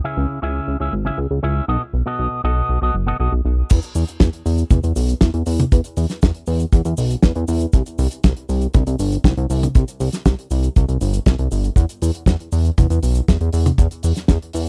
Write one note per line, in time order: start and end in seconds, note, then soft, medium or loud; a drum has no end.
0.04 0.39 C#3 medium
0.04 0.39 C#4 medium
0.04 0.39 E4 medium
0.04 0.39 G#4 medium
0.04 0.39 E5 medium
0.17 0.26 C#2 loud
0.42 0.60 C#2 loud
0.42 0.77 C#3 medium
0.42 0.77 C#4 medium
0.42 0.77 E4 medium
0.42 0.77 G#4 medium
0.42 0.77 E5 loud
0.68 0.77 C#2 medium
0.80 0.89 C#2 medium
0.80 0.93 C#3 medium
0.80 0.93 C#4 medium
0.80 0.93 E4 medium
0.80 0.93 G#4 medium
0.80 0.93 E5 medium
0.93 1.11 G#1 medium
1.05 1.18 C#3 medium
1.05 1.18 C#4 medium
1.05 1.18 E4 medium
1.05 1.18 G#4 medium
1.05 1.18 E5 medium
1.18 1.27 C#2 medium
1.31 1.40 C#2 medium
1.43 1.61 C#2 loud
1.43 1.65 C#4 medium
1.43 1.65 E4 medium
1.43 1.65 G#4 medium
1.43 1.65 E5 medium
1.68 1.77 B1 loud
1.68 1.81 B2 medium
1.68 1.81 B3 medium
1.68 1.81 F#4 medium
1.68 1.81 A4 medium
1.68 1.81 D#5 medium
1.93 2.03 B1 medium
2.06 2.41 B2 medium
2.06 2.41 B3 medium
2.06 2.41 F#4 medium
2.06 2.41 A4 medium
2.06 2.41 D#5 medium
2.19 2.28 B1 loud
2.44 2.62 B1 loud
2.44 2.79 B2 medium
2.44 2.79 B3 medium
2.44 2.79 F#4 medium
2.44 2.79 A4 medium
2.44 2.79 D#5 loud
2.69 2.78 B1 medium
2.81 2.91 B1 medium
2.81 2.94 B2 medium
2.81 2.94 B3 medium
2.81 2.94 F#4 medium
2.81 2.94 A4 medium
2.81 2.94 D#5 medium
2.94 3.12 F#1 medium
3.07 3.17 B2 medium
3.07 3.17 B3 medium
3.07 3.17 F#4 medium
3.07 3.17 A4 medium
3.07 3.17 D#5 loud
3.20 3.29 B1 medium
3.20 3.32 B2 medium
3.20 3.32 B3 medium
3.20 3.32 F#4 medium
3.20 3.32 A4 medium
3.20 3.32 D#5 loud
3.32 3.41 B1 medium
3.45 3.63 B1 loud
3.70 3.80 E2 loud
3.70 kick loud
3.70 closed hi-hat medium
3.70 crash loud
3.70 cabasa medium
3.82 closed hi-hat medium
3.82 cabasa soft
3.95 4.04 E2 medium
3.95 open hi-hat loud
3.95 cabasa medium
4.08 closed hi-hat medium
4.08 cabasa medium
4.20 4.29 E2 loud
4.20 kick loud
4.20 snare loud
4.20 closed hi-hat medium
4.20 cabasa medium
4.33 closed hi-hat medium
4.46 4.64 E2 loud
4.46 open hi-hat loud
4.46 cabasa medium
4.58 closed hi-hat medium
4.58 cabasa soft
4.70 4.80 E2 loud
4.70 kick loud
4.70 closed hi-hat medium
4.70 high tom medium
4.70 cabasa soft
4.83 4.93 E2 medium
4.83 closed hi-hat medium
4.83 cabasa soft
4.96 5.14 B1 medium
4.96 open hi-hat loud
4.96 cabasa medium
5.08 closed hi-hat medium
5.08 cabasa soft
5.21 5.30 E2 loud
5.21 kick loud
5.21 snare loud
5.21 closed hi-hat medium
5.21 cabasa medium
5.34 5.43 E2 loud
5.34 closed hi-hat medium
5.46 5.65 E2 loud
5.46 open hi-hat loud
5.46 cabasa medium
5.59 closed hi-hat medium
5.59 high tom medium
5.59 cabasa soft
5.72 5.81 E2 loud
5.72 kick loud
5.72 closed hi-hat medium
5.72 cabasa medium
5.84 closed hi-hat medium
5.84 cabasa soft
5.97 6.06 E2 medium
5.97 open hi-hat loud
5.97 cabasa medium
6.09 snare soft
6.09 closed hi-hat medium
6.09 cabasa soft
6.22 6.32 E2 loud
6.22 kick loud
6.22 snare loud
6.22 closed hi-hat medium
6.22 cabasa medium
6.34 closed hi-hat medium
6.47 6.65 E2 loud
6.47 open hi-hat loud
6.47 cabasa medium
6.60 closed hi-hat medium
6.60 cabasa medium
6.72 6.82 E2 loud
6.72 kick loud
6.72 closed hi-hat medium
6.72 cabasa medium
6.85 6.94 E2 medium
6.85 closed hi-hat medium
6.85 cabasa soft
6.97 7.16 B1 medium
6.97 open hi-hat loud
6.97 cabasa medium
7.10 closed hi-hat medium
7.10 cabasa soft
7.23 7.32 E2 loud
7.23 kick loud
7.23 snare loud
7.23 closed hi-hat medium
7.23 cabasa medium
7.35 7.45 E2 loud
7.35 closed hi-hat medium
7.48 7.66 E2 loud
7.48 open hi-hat loud
7.48 cabasa medium
7.60 closed hi-hat medium
7.60 cabasa soft
7.73 7.82 C2 loud
7.73 kick loud
7.73 closed hi-hat medium
7.73 cabasa medium
7.86 closed hi-hat medium
7.86 cabasa soft
7.98 8.08 C2 loud
7.98 open hi-hat loud
7.98 cabasa medium
8.11 closed hi-hat medium
8.11 cabasa soft
8.24 8.33 C2 loud
8.24 kick loud
8.24 snare loud
8.24 closed hi-hat medium
8.24 cabasa medium
8.37 closed hi-hat medium
8.49 8.67 C2 loud
8.49 open hi-hat loud
8.49 cabasa medium
8.62 closed hi-hat medium
8.62 cabasa soft
8.74 8.83 C2 loud
8.74 kick loud
8.74 closed hi-hat medium
8.74 high tom medium
8.74 cabasa medium
8.87 8.96 C2 medium
8.87 closed hi-hat medium
8.87 cabasa soft
8.99 9.17 G1 medium
8.99 open hi-hat loud
8.99 cabasa medium
9.12 closed hi-hat medium
9.12 cabasa soft
9.24 9.34 C2 loud
9.24 kick loud
9.24 snare loud
9.24 closed hi-hat medium
9.24 cabasa medium
9.37 9.46 C2 loud
9.37 closed hi-hat medium
9.50 9.68 C2 loud
9.50 open hi-hat loud
9.50 cabasa medium
9.63 closed hi-hat medium
9.63 high tom medium
9.63 cabasa soft
9.75 9.84 C2 loud
9.75 kick loud
9.75 closed hi-hat medium
9.75 cabasa medium
9.88 closed hi-hat medium
9.88 cabasa medium
10.00 10.09 C2 loud
10.00 open hi-hat loud
10.00 cabasa medium
10.12 snare soft
10.12 closed hi-hat medium
10.12 cabasa soft
10.25 10.35 C2 loud
10.25 kick loud
10.25 snare loud
10.25 closed hi-hat medium
10.25 cabasa medium
10.39 closed hi-hat medium
10.51 10.69 C2 loud
10.51 open hi-hat medium
10.51 cabasa medium
10.63 closed hi-hat medium
10.63 cabasa soft
10.76 10.85 C2 loud
10.76 kick loud
10.76 closed hi-hat medium
10.76 cabasa soft
10.89 10.98 C2 medium
10.89 closed hi-hat medium
10.89 cabasa soft
11.01 11.19 G1 medium
11.01 open hi-hat loud
11.01 cabasa medium
11.13 closed hi-hat medium
11.13 cabasa medium
11.26 11.35 C2 loud
11.26 kick loud
11.26 snare loud
11.26 closed hi-hat medium
11.26 cabasa medium
11.39 11.48 C2 medium
11.39 closed hi-hat medium
11.52 11.70 G1 loud
11.52 open hi-hat loud
11.52 cabasa medium
11.64 closed hi-hat medium
11.64 cabasa soft
11.76 11.85 E2 loud
11.76 kick loud
11.76 closed hi-hat medium
11.76 cabasa medium
11.89 closed hi-hat medium
11.89 cabasa soft
12.02 12.11 E2 medium
12.02 open hi-hat loud
12.02 cabasa medium
12.14 closed hi-hat medium
12.14 cabasa soft
12.26 12.36 E2 loud
12.26 kick loud
12.26 snare loud
12.26 closed hi-hat medium
12.26 cabasa medium
12.40 closed hi-hat medium
12.52 12.70 E2 loud
12.52 open hi-hat loud
12.52 cabasa medium
12.65 closed hi-hat medium
12.65 cabasa soft
12.78 12.87 E2 loud
12.78 kick loud
12.78 closed hi-hat medium
12.78 high tom medium
12.78 cabasa medium
12.90 12.99 E2 medium
12.90 closed hi-hat medium
12.90 cabasa medium
13.03 13.21 B1 medium
13.03 open hi-hat loud
13.03 cabasa medium
13.15 closed hi-hat medium
13.15 cabasa medium
13.28 13.37 E2 medium
13.28 kick loud
13.28 snare loud
13.28 closed hi-hat medium
13.28 cabasa medium
13.41 13.50 E2 loud
13.41 closed hi-hat medium
13.53 13.71 E2 loud
13.53 open hi-hat loud
13.53 cabasa medium
13.66 closed hi-hat soft
13.66 high tom medium
13.66 cabasa medium
13.78 13.87 E2 loud
13.78 kick loud
13.78 closed hi-hat medium
13.78 cabasa medium
13.91 closed hi-hat medium
13.91 cabasa soft
14.03 14.13 E2 loud
14.03 open hi-hat loud
14.03 cabasa medium
14.16 snare soft
14.16 closed hi-hat medium
14.16 cabasa medium
14.28 14.38 E2 loud
14.28 kick loud
14.28 snare loud
14.28 closed hi-hat medium
14.28 cabasa medium
14.42 closed hi-hat medium
14.53 14.69 E2 loud
14.53 open hi-hat loud
14.53 cabasa medium